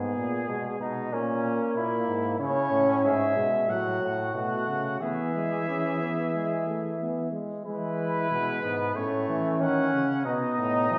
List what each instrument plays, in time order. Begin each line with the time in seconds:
Already playing: bass trombone G#2, trombone B3, flugelhorn G#4
0.17 bass trombone A#2
0.49 bass trombone B2, trombone G#3
0.80 bass trombone B2, flugelhorn D#4
1.13 bass trombone A#2, trombone A#3, flugelhorn C#4
1.76 bass trombone A#2, flugelhorn E4
2.08 bass trombone G#2
2.39 bass trombone C#3, trombone C#4, flugelhorn E4, trumpet C#5
2.71 bass trombone A2
3.03 bass trombone G#2, flugelhorn G#4, trumpet E5
3.36 bass trombone B2, trombone G#3
3.68 bass trombone A2, trombone F#3, flugelhorn F#4, trumpet F#5
4.01 bass trombone A2
4.34 bass trombone B2, trombone A3, flugelhorn F#4, trumpet F#5
4.68 bass trombone C#3
5.01 bass trombone E3, trombone B3, flugelhorn G#4, trumpet E5
5.35 trombone G#3
5.68 trombone C#4
6.01 trombone B3
6.34 trombone G#3
6.67 trombone A3
7.01 trombone B3
7.32 trombone G#3
7.66 bass trombone E3, trombone G#3, flugelhorn E4, trumpet B4
8.31 bass trombone B2, trombone G#3
8.63 bass trombone G#2, flugelhorn B3
8.95 bass trombone A2, flugelhorn A3, trombone C#4, trumpet C#5
9.29 bass trombone E3
9.60 bass trombone D#3, flugelhorn C#4, trumpet F#5
9.93 bass trombone C#3
10.25 bass trombone B2, trombone B3, flugelhorn D#4, trumpet D#5
10.58 bass trombone A2
10.90 bass trombone E3, trombone F#3